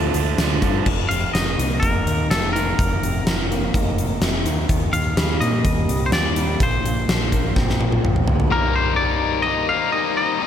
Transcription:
0.00 0.14 D2 medium
0.00 0.15 D3 medium
0.00 0.15 F3 medium
0.00 0.14 A3 medium
0.00 0.13 D4 medium
0.14 0.37 D2 medium
0.14 0.39 D3 medium
0.14 0.39 F3 medium
0.14 0.40 A3 medium
0.14 0.40 D4 medium
0.14 muted clean electric guitar stroke soft
0.14 closed hi-hat medium
0.38 0.61 D2 medium
0.38 0.62 D3 medium
0.38 0.63 F3 medium
0.38 0.63 A3 medium
0.38 0.63 D4 loud
0.38 muted clean electric guitar stroke soft
0.38 snare medium
0.38 closed hi-hat medium
0.62 0.85 G2 medium
0.62 0.87 D3 medium
0.62 0.87 F3 medium
0.62 0.87 A3 medium
0.62 0.87 D4 medium
0.62 kick medium
0.62 closed hi-hat medium
0.86 1.08 F1 medium
0.86 2.06 F2 medium
0.86 kick medium
0.86 crash medium
1.09 1.32 F1 medium
1.09 2.30 C3 medium
1.09 1.33 F5 medium
1.09 closed hi-hat medium
1.33 1.55 F1 medium
1.33 2.05 D#3 medium
1.33 1.84 D#5 medium
1.33 snare medium
1.33 closed hi-hat medium
1.57 1.79 C2 medium
1.57 3.06 A#3 medium
1.57 closed hi-hat medium
1.80 2.04 F1 medium
1.80 3.74 D#4 medium
1.80 2.30 A#4 medium
1.80 kick medium
1.80 closed hi-hat medium
2.06 2.27 D#2 medium
2.06 2.53 D#3 medium
2.06 closed hi-hat medium
2.29 2.72 F1 medium
2.29 3.02 C3 medium
2.29 2.52 A4 medium
2.29 snare loud
2.29 closed hi-hat medium
2.53 3.26 D#3 medium
2.53 3.45 A#4 medium
2.53 closed hi-hat medium
2.78 3.00 F1 medium
2.78 3.99 F2 medium
2.78 kick loud
2.78 closed hi-hat medium
3.01 3.23 F1 medium
3.01 4.21 C3 medium
3.01 closed hi-hat medium
3.25 3.68 F1 medium
3.25 3.97 D#3 medium
3.25 snare medium
3.25 closed hi-hat medium
3.51 5.42 A#3 medium
3.51 closed hi-hat soft
3.74 4.17 F1 medium
3.74 4.70 D#4 medium
3.74 kick medium
3.74 closed hi-hat medium
3.98 4.45 D#3 medium
3.98 closed hi-hat medium
4.20 4.42 F1 medium
4.20 4.69 C3 medium
4.20 snare medium
4.20 closed hi-hat medium
4.44 4.66 D#2 medium
4.44 4.68 D#3 medium
4.44 closed hi-hat medium
4.69 4.91 D#2 medium
4.69 4.92 D#3 medium
4.69 kick medium
4.69 closed hi-hat medium
4.93 5.14 D#2 medium
4.93 6.12 D#3 medium
4.93 5.40 F5 medium
4.93 closed hi-hat medium
5.17 5.38 D#2 medium
5.17 5.89 G3 medium
5.17 snare loud
5.17 closed hi-hat medium
5.40 5.62 A#2 medium
5.40 7.32 A#3 medium
5.40 6.06 D#5 medium
5.40 closed hi-hat medium
5.64 5.86 D#2 medium
5.64 kick medium
5.64 closed hi-hat medium
5.89 6.10 C2 medium
5.89 6.37 G3 medium
5.89 closed hi-hat medium
6.06 6.13 C5 medium
6.12 6.55 D#2 medium
6.12 6.61 D#3 medium
6.12 6.58 D5 medium
6.12 snare loud
6.12 closed hi-hat medium
6.36 6.61 G3 medium
6.36 closed hi-hat medium
6.60 6.81 A#1 medium
6.60 6.85 A#2 medium
6.60 8.25 C5 medium
6.60 kick loud
6.60 closed hi-hat medium
6.83 7.05 A#1 medium
6.83 8.03 A#2 medium
6.83 closed hi-hat medium
7.08 7.51 A#1 medium
7.08 7.80 F3 medium
7.08 snare loud
7.08 closed hi-hat medium
7.32 8.52 A#3 medium
7.32 kick medium
7.32 closed hi-hat medium
7.56 7.98 A#1 medium
7.56 8.52 C4 medium
7.56 kick loud
7.56 snare medium
7.69 snare medium
7.81 8.27 F3 medium
7.81 high tom medium
7.92 high tom medium
8.03 8.25 A#1 medium
8.03 8.52 A#2 medium
8.03 mid tom medium
8.16 mid tom medium
8.28 8.49 D2 medium
8.28 8.52 F3 medium
8.28 floor tom medium
8.40 floor tom medium
8.50 8.96 D#3 medium
8.50 8.77 G3 medium
8.50 8.76 A#3 medium
8.50 8.75 D#4 medium
8.50 10.41 D#4 medium
8.50 8.74 A#4 medium
8.50 10.47 C5 medium
8.50 10.47 G5 medium
8.75 8.99 G3 medium
8.75 8.99 A#3 medium
8.75 9.00 D#4 medium
8.75 8.96 C5 medium
8.96 9.45 D#3 medium
8.96 9.46 G3 medium
8.96 9.47 A#3 medium
8.96 9.47 D#4 medium
8.96 9.42 D5 medium
9.42 9.91 D#3 medium
9.42 9.69 D#5 loud
9.47 9.71 G3 medium
9.47 9.70 A#3 medium
9.47 9.68 D#4 loud
9.69 9.93 G3 medium
9.69 9.94 A#3 medium
9.69 9.94 D#4 medium
9.69 9.92 F5 medium
9.92 10.40 D#3 medium
9.92 10.19 G3 medium
9.92 10.18 A#3 medium
9.92 10.16 D#4 medium
9.92 10.16 D#5 loud
10.17 10.41 G3 medium
10.17 10.42 A#3 medium
10.17 10.40 D#4 medium
10.17 10.47 D#5 medium
10.41 10.47 C3 medium
10.41 10.47 G3 loud
10.41 10.47 C4 medium
10.41 10.47 D#4 medium
10.41 10.47 D#4 loud

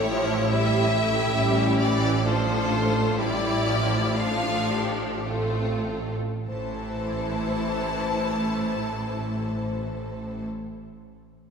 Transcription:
0.00 6.14 A1 loud
0.00 6.14 A2 loud
0.00 0.12 A3 loud
0.00 1.36 E4 loud
0.00 2.21 E4 loud
0.00 0.51 G4 medium
0.00 0.53 C#5 loud
0.12 0.52 F3 loud
0.51 0.94 G3 loud
0.51 2.21 G4 loud
0.51 1.79 E5 loud
0.94 1.37 A3 medium
1.35 1.78 G3 loud
1.35 2.23 C#4 loud
1.79 2.25 E3 loud
1.79 2.24 D5 loud
2.23 2.70 F3 medium
2.23 3.18 D4 medium
2.23 3.17 F4 medium
2.23 3.16 A4 loud
2.23 3.19 C5 loud
2.71 3.19 A3 loud
3.17 3.67 G3 loud
3.17 4.18 E4 loud
3.17 4.18 G4 medium
3.17 4.18 D5 loud
3.66 4.18 F3 loud
4.17 5.24 F3 loud
4.17 5.26 D4 medium
4.17 4.70 F4 loud
4.17 5.23 A4 medium
4.17 5.27 F5 loud
4.69 5.25 G4 medium
5.24 6.17 A3 medium
5.24 6.19 C4 medium
5.24 6.17 F4 medium
5.24 6.16 A4 medium
6.47 10.44 A1 loud
6.47 10.44 A2 medium
6.47 10.44 E3 medium
6.47 10.44 E4 medium
6.47 10.43 A4 medium
6.47 10.44 C5 medium
6.47 10.46 A5 loud

